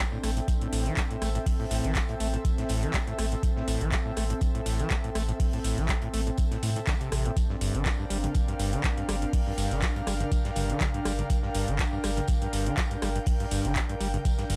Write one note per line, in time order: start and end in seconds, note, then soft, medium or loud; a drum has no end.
0.00 9.28 C4 medium
0.00 0.88 D4 medium
0.00 7.37 A4 medium
0.00 7.37 E5 medium
0.00 7.37 G5 medium
0.12 0.18 A2 medium
0.23 0.40 A1 medium
0.23 0.31 A3 medium
0.23 cross-stick medium
0.23 snare soft
0.23 open hi-hat medium
0.23 tambourine medium
0.37 0.41 A2 medium
0.37 closed hi-hat soft
0.37 closed hi-hat medium
0.48 kick loud
0.48 closed hi-hat medium
0.48 tambourine medium
0.61 0.68 A2 medium
0.61 closed hi-hat soft
0.73 0.89 A1 medium
0.73 0.88 A2 medium
0.73 open hi-hat loud
0.73 tambourine medium
0.86 0.95 E3 medium
0.86 closed hi-hat medium
0.97 1.02 G3 medium
0.97 kick loud
0.97 snare loud
0.97 clap loud
0.97 closed hi-hat medium
0.97 tambourine medium
1.11 1.17 A2 medium
1.11 closed hi-hat soft
1.22 1.38 A1 medium
1.22 1.29 A3 medium
1.22 cross-stick medium
1.22 open hi-hat medium
1.22 tambourine medium
1.35 1.39 A2 medium
1.35 closed hi-hat medium
1.46 kick loud
1.46 closed hi-hat medium
1.46 open hi-hat medium
1.60 1.66 A2 medium
1.71 1.80 A1 loud
1.71 1.86 A2 medium
1.71 open hi-hat loud
1.71 tambourine medium
1.84 1.99 A1 loud
1.84 1.94 E3 medium
1.84 closed hi-hat medium
1.95 2.00 G3 medium
1.95 kick loud
1.95 snare loud
1.95 clap loud
1.95 closed hi-hat medium
1.95 tambourine medium
2.09 2.15 A2 medium
2.09 closed hi-hat soft
2.20 2.37 A1 medium
2.20 2.28 A3 medium
2.20 open hi-hat medium
2.20 tambourine medium
2.34 2.37 A2 medium
2.34 closed hi-hat soft
2.45 kick loud
2.45 closed hi-hat medium
2.45 tambourine medium
2.58 2.64 A2 medium
2.58 snare medium
2.58 closed hi-hat soft
2.69 2.86 A1 medium
2.69 2.84 A2 medium
2.69 open hi-hat loud
2.69 tambourine medium
2.83 2.92 E3 medium
2.83 closed hi-hat medium
2.94 2.98 G3 medium
2.94 kick loud
2.94 snare loud
2.94 clap loud
2.94 closed hi-hat medium
2.94 tambourine medium
3.07 3.14 A2 medium
3.07 closed hi-hat soft
3.19 3.35 A1 medium
3.19 3.26 A3 medium
3.19 cross-stick medium
3.19 open hi-hat medium
3.19 tambourine medium
3.32 3.36 A2 medium
3.32 closed hi-hat soft
3.43 kick loud
3.43 closed hi-hat medium
3.43 tambourine medium
3.57 3.63 A2 medium
3.57 snare soft
3.68 3.76 A1 loud
3.68 3.83 A2 medium
3.68 open hi-hat loud
3.68 tambourine medium
3.81 3.96 A1 loud
3.81 3.90 E3 medium
3.81 closed hi-hat medium
3.92 3.97 G3 medium
3.92 kick loud
3.92 snare loud
3.92 clap loud
3.92 closed hi-hat medium
3.92 tambourine medium
4.06 4.12 A2 medium
4.17 4.33 A1 medium
4.17 4.24 A3 medium
4.17 cross-stick medium
4.17 snare soft
4.17 open hi-hat medium
4.17 tambourine medium
4.30 4.34 A2 medium
4.30 closed hi-hat soft
4.41 kick loud
4.41 closed hi-hat medium
4.41 tambourine medium
4.55 4.61 A2 medium
4.55 closed hi-hat soft
4.66 4.83 A1 medium
4.66 4.81 A2 medium
4.66 open hi-hat loud
4.66 tambourine medium
4.79 4.89 E3 medium
4.79 closed hi-hat medium
4.90 4.95 G3 medium
4.90 kick loud
4.90 snare loud
4.90 clap loud
4.90 closed hi-hat medium
4.90 tambourine medium
5.04 5.10 A2 medium
5.04 closed hi-hat soft
5.15 5.32 A1 medium
5.15 5.23 A3 medium
5.15 cross-stick medium
5.15 open hi-hat medium
5.15 tambourine medium
5.29 5.32 A2 medium
5.29 closed hi-hat soft
5.40 kick loud
5.40 closed hi-hat medium
5.40 open hi-hat medium
5.53 5.59 A2 medium
5.53 closed hi-hat soft
5.64 5.73 A1 loud
5.64 5.79 A2 medium
5.64 open hi-hat loud
5.64 tambourine medium
5.78 5.93 A1 loud
5.78 5.87 E3 medium
5.78 closed hi-hat soft
5.89 5.93 G3 medium
5.89 kick loud
5.89 snare loud
5.89 clap loud
5.89 closed hi-hat medium
5.89 tambourine medium
6.02 6.09 A2 medium
6.02 closed hi-hat soft
6.14 6.30 A1 medium
6.14 6.21 A3 medium
6.14 open hi-hat loud
6.14 tambourine medium
6.27 6.31 A2 medium
6.27 closed hi-hat soft
6.37 kick loud
6.37 closed hi-hat medium
6.37 tambourine medium
6.52 6.58 A2 medium
6.52 snare soft
6.52 closed hi-hat soft
6.63 6.70 A2 medium
6.63 6.79 A2 medium
6.63 open hi-hat loud
6.63 tambourine medium
6.76 6.80 A2 medium
6.76 closed hi-hat soft
6.87 6.95 D3 medium
6.87 kick loud
6.87 snare loud
6.87 clap loud
6.87 closed hi-hat medium
6.87 tambourine medium
7.01 7.10 C3 medium
7.01 closed hi-hat soft
7.12 7.28 A1 medium
7.12 7.27 C3 medium
7.12 cross-stick medium
7.12 open hi-hat medium
7.12 tambourine medium
7.25 7.32 A2 medium
7.25 closed hi-hat soft
7.37 14.56 D4 medium
7.37 kick loud
7.37 closed hi-hat medium
7.37 tambourine medium
7.50 7.56 G2 medium
7.50 snare soft
7.59 7.70 G1 loud
7.59 7.76 G2 medium
7.59 14.56 A#4 medium
7.59 open hi-hat loud
7.59 tambourine medium
7.65 14.56 G5 medium
7.75 7.89 G1 loud
7.75 7.84 D3 medium
7.75 closed hi-hat soft
7.79 14.56 F5 medium
7.86 7.90 F3 medium
7.86 kick loud
7.86 snare loud
7.86 clap loud
7.86 closed hi-hat medium
7.86 tambourine medium
7.99 8.05 G2 medium
8.10 8.27 G1 medium
8.10 8.18 G3 medium
8.10 open hi-hat medium
8.10 tambourine medium
8.24 8.27 G2 medium
8.24 closed hi-hat soft
8.24 mid tom medium
8.34 kick loud
8.34 closed hi-hat medium
8.34 tambourine medium
8.48 8.54 G2 medium
8.48 closed hi-hat soft
8.59 8.76 G1 medium
8.59 8.74 G2 medium
8.59 open hi-hat loud
8.59 tambourine medium
8.73 8.82 D3 medium
8.73 closed hi-hat medium
8.84 8.88 F3 medium
8.84 kick loud
8.84 snare loud
8.84 clap loud
8.84 closed hi-hat medium
8.84 tambourine medium
8.97 9.04 G2 medium
8.97 closed hi-hat soft
9.09 9.25 G1 medium
9.09 9.16 G3 medium
9.09 cross-stick medium
9.09 open hi-hat medium
9.09 tambourine medium
9.22 9.26 G2 medium
9.22 closed hi-hat soft
9.33 kick loud
9.33 closed hi-hat medium
9.33 open hi-hat medium
9.47 9.53 G2 medium
9.58 9.66 G1 loud
9.58 9.73 G2 medium
9.58 open hi-hat loud
9.58 tambourine medium
9.71 9.86 G1 loud
9.71 9.80 D3 medium
9.71 closed hi-hat medium
9.82 9.87 F3 medium
9.82 kick loud
9.82 snare loud
9.82 clap loud
9.82 closed hi-hat medium
9.82 tambourine medium
9.96 10.02 G2 medium
9.96 closed hi-hat soft
10.07 10.24 G1 medium
10.07 10.14 G3 medium
10.07 cross-stick medium
10.07 open hi-hat medium
10.07 tambourine medium
10.20 10.24 G2 medium
10.20 closed hi-hat medium
10.20 mid tom medium
10.32 kick loud
10.32 closed hi-hat medium
10.32 tambourine medium
10.45 10.51 G2 medium
10.45 snare medium
10.45 closed hi-hat soft
10.56 10.73 G1 medium
10.56 10.71 G2 medium
10.56 open hi-hat loud
10.56 mid tom medium
10.56 tambourine medium
10.70 10.79 D3 medium
10.70 closed hi-hat medium
10.81 10.85 F3 medium
10.81 kick loud
10.81 snare loud
10.81 clap loud
10.81 closed hi-hat medium
10.81 mid tom loud
10.81 tambourine medium
10.94 11.00 G2 medium
10.94 closed hi-hat soft
11.05 11.22 G1 medium
11.05 11.13 G3 medium
11.05 cross-stick medium
11.05 open hi-hat medium
11.05 tambourine medium
11.19 11.22 G2 medium
11.19 closed hi-hat medium
11.19 mid tom loud
11.30 kick loud
11.30 closed hi-hat medium
11.30 tambourine medium
11.43 11.50 G2 medium
11.43 snare soft
11.54 11.63 G1 loud
11.54 11.69 G2 medium
11.54 open hi-hat loud
11.54 tambourine medium
11.68 11.83 G1 loud
11.68 11.77 D3 medium
11.68 closed hi-hat medium
11.79 11.84 F3 medium
11.79 kick loud
11.79 snare loud
11.79 clap loud
11.79 closed hi-hat medium
11.79 tambourine medium
11.93 11.99 G2 medium
12.03 12.20 G1 medium
12.03 12.11 G3 medium
12.03 cross-stick medium
12.03 snare soft
12.03 open hi-hat medium
12.03 tambourine medium
12.17 12.21 G2 medium
12.17 closed hi-hat medium
12.17 closed hi-hat soft
12.17 mid tom medium
12.28 kick loud
12.28 closed hi-hat medium
12.28 tambourine medium
12.42 12.48 G2 medium
12.42 closed hi-hat soft
12.53 12.69 G1 medium
12.53 12.68 G2 medium
12.53 open hi-hat loud
12.53 tambourine medium
12.66 12.76 D3 medium
12.66 closed hi-hat medium
12.77 12.82 F3 medium
12.77 kick medium
12.77 snare loud
12.77 clap loud
12.77 closed hi-hat medium
12.77 tambourine medium
12.91 12.97 G2 medium
12.91 closed hi-hat soft
13.02 13.19 G1 medium
13.02 13.10 G3 medium
13.02 cross-stick medium
13.02 snare loud
13.02 open hi-hat medium
13.02 tambourine medium
13.16 13.19 G2 medium
13.16 closed hi-hat medium
13.26 kick loud
13.26 closed hi-hat medium
13.26 open hi-hat medium
13.40 13.46 G2 medium
13.40 closed hi-hat soft
13.51 13.60 G1 loud
13.51 13.66 G2 medium
13.51 open hi-hat loud
13.51 tambourine medium
13.65 13.80 G1 loud
13.65 13.74 D3 medium
13.65 closed hi-hat medium
13.76 13.80 F3 medium
13.76 kick loud
13.76 snare loud
13.76 clap loud
13.76 closed hi-hat medium
13.76 tambourine medium
13.89 13.96 G2 medium
13.89 closed hi-hat soft
14.00 14.17 G1 medium
14.00 14.08 G3 medium
14.00 open hi-hat medium
14.00 tambourine medium
14.14 14.18 G2 medium
14.14 closed hi-hat medium
14.14 mid tom medium
14.25 kick loud
14.25 closed hi-hat medium
14.25 tambourine medium
14.38 14.45 G2 medium
14.38 snare soft
14.38 closed hi-hat soft
14.50 14.56 G1 loud
14.50 14.56 G2 medium
14.50 open hi-hat loud
14.50 mid tom medium
14.50 tambourine medium